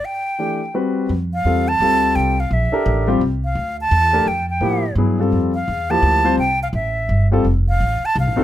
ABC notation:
X:1
M:3/4
L:1/8
Q:"Swing" 1/4=170
K:Clyd
V:1 name="Flute"
g4 z2 | [K:F] z f2 a3 | g f e3 z | z f2 a3 |
g g3 z2 | z f2 a3 | g f e3 z | z f2 a f z |]
V:2 name="Grand piano"
z2 [E,A,DG] z [G,CFB]2 | [K:F] z2 [G,CFA] z [G,CFA]2- | [G,CFA] z2 [DGAB]2 [G,CFG] | z4 z [A,DGB] |
z2 [F,B,EG] z [_G,=B,E_A] [=G,CF=A]- | [G,CFA] z2 [F,B,EG]2 [G,CFc] | z4 z [G,CFA] | z4 z [C_E_GA] |]
V:3 name="Upright bass" clef=bass
z6 | [K:F] F,,2 E,,2 D,,2 | C,,2 B,,, z A,,,2 | C,,2 D,,2 E,,2 |
F,,2 A,,2 G,,2 | F,,2 E,,2 D,,2 | C,,2 A,,,2 G,,,2 | F,,,2 A,,, z (3C,, A,,, F,,, |]